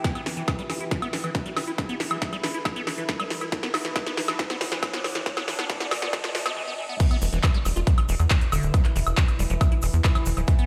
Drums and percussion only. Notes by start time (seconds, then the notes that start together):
0.04 kick, snare, closed hi-hat
0.15 closed hi-hat, high woodblock
0.26 snare, open hi-hat
0.37 closed hi-hat
0.48 kick, snare, closed hi-hat, high woodblock
0.59 closed hi-hat
0.70 snare, open hi-hat, high woodblock
0.81 closed hi-hat
0.91 kick, snare, closed hi-hat
1.02 closed hi-hat, high woodblock
1.13 snare, open hi-hat
1.24 closed hi-hat, high woodblock
1.35 kick, snare, closed hi-hat
1.46 closed hi-hat
1.57 snare, open hi-hat, high woodblock
1.67 closed hi-hat
1.78 kick, snare, closed hi-hat, high woodblock
1.89 closed hi-hat
2.00 snare, open hi-hat
2.11 closed hi-hat, high woodblock
2.22 kick, snare, closed hi-hat
2.33 closed hi-hat, high woodblock
2.43 snare, open hi-hat
2.54 closed hi-hat
2.65 kick, snare, closed hi-hat, high woodblock
2.76 closed hi-hat
2.87 snare, open hi-hat, high woodblock
2.98 closed hi-hat
3.09 kick, snare, closed hi-hat
3.20 closed hi-hat, high woodblock
3.30 snare, open hi-hat
3.41 closed hi-hat, high woodblock
3.52 kick, snare, closed hi-hat
3.63 snare, closed hi-hat
3.74 snare, open hi-hat, high woodblock
3.85 snare, closed hi-hat
3.96 kick, snare, closed hi-hat, high woodblock
4.07 snare, closed hi-hat
4.17 snare, open hi-hat
4.28 snare, closed hi-hat, high woodblock
4.39 kick, snare, closed hi-hat
4.50 snare, closed hi-hat, high woodblock
4.61 snare, open hi-hat
4.72 snare, closed hi-hat
4.83 kick, snare, closed hi-hat, high woodblock
4.94 snare, closed hi-hat
5.04 snare, open hi-hat, high woodblock
5.15 snare, closed hi-hat
5.26 kick, snare, closed hi-hat
5.37 snare, closed hi-hat, high woodblock
5.48 snare, open hi-hat
5.59 snare, closed hi-hat, high woodblock
5.70 kick, snare, closed hi-hat
5.80 snare, closed hi-hat
5.91 snare, open hi-hat, high woodblock
6.02 snare, closed hi-hat
6.13 kick, snare, closed hi-hat, high woodblock
6.24 snare, closed hi-hat
6.35 snare, open hi-hat
6.46 snare, closed hi-hat, high woodblock
7.00 kick, closed hi-hat, crash, shaker
7.11 closed hi-hat, high woodblock
7.22 open hi-hat, shaker
7.33 closed hi-hat, shaker
7.43 kick, clap, closed hi-hat, high woodblock, shaker
7.54 closed hi-hat
7.65 open hi-hat, high woodblock, shaker
7.76 closed hi-hat, shaker
7.87 kick, closed hi-hat, shaker
7.98 closed hi-hat, high woodblock
8.09 open hi-hat, shaker
8.20 closed hi-hat, high woodblock, shaker
8.30 kick, clap, closed hi-hat, shaker
8.41 closed hi-hat
8.52 open hi-hat, high woodblock, shaker
8.63 closed hi-hat, shaker
8.74 kick, closed hi-hat, high woodblock, shaker
8.85 clap, closed hi-hat
8.96 open hi-hat, shaker
9.06 closed hi-hat, high woodblock, shaker
9.17 kick, clap, closed hi-hat, shaker
9.28 closed hi-hat, high woodblock
9.39 open hi-hat, shaker
9.50 closed hi-hat, shaker
9.61 kick, closed hi-hat, high woodblock, shaker
9.72 closed hi-hat
9.82 open hi-hat, high woodblock, shaker
9.94 closed hi-hat, shaker
10.04 kick, clap, closed hi-hat, shaker
10.15 closed hi-hat, high woodblock
10.26 open hi-hat, shaker
10.37 closed hi-hat, high woodblock, shaker
10.47 kick, closed hi-hat, shaker
10.59 closed hi-hat